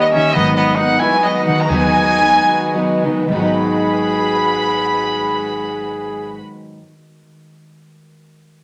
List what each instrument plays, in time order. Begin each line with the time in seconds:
Already playing: harp D#3 G3 A#3 G4 D#5, nylon-string guitar D#3 A#3 D#4 G4 A#4, violin section G3 D#4 A#4
0.01 violin section D#5
0.12 harp D#3, trumpet C#4, nylon-string guitar G4 A#4, violin section E5
0.16 nylon-string guitar D#4
0.31 harp D#3, trumpet B3, violin section D#5
0.35 upright bass G#1, nylon-string guitar G#2 D#3 F#3 B3 D#4 B4, violin section G#3 F#4 B4
0.55 harp G#3, trumpet B3, violin section D#5
0.75 nylon-string guitar F#3, harp B3, trumpet D#4, violin section F#5
0.80 nylon-string guitar B3 D#4 B4
0.99 trumpet E4, harp F#4, violin section G#5
1.03 nylon-string guitar F#3 B3 D#4 B4
1.19 trumpet B3, violin section D#5
1.23 nylon-string guitar F#3 B3 D#4 B4, harp D#5
1.42 trumpet D#4, violin section F#5
1.47 harp D#3
1.61 trumpet F#4, violin section A#5
1.66 upright bass D#2, harp D#3, trumpet D#4, violin section G#5
1.71 nylon-string guitar G#2 D#3 F#3 B3 D#4 B4
1.95 harp G#3
2.21 nylon-string guitar F#3 B3 D#4 B4, harp B3
2.48 harp F#4
2.74 nylon-string guitar F#3 B3 D#4 B4, harp D#5
3.04 harp D#3, nylon-string guitar F#3 B3 D#4 B4
3.27 nylon-string guitar G#2, harp D#3 G#3, violin section B5
3.31 upright bass G#1, nylon-string guitar D#3, violin section G#3 F#4 B4, harp B3, trumpet G#4
3.36 nylon-string guitar F#3 B3, harp F#4
3.42 nylon-string guitar D#4 B4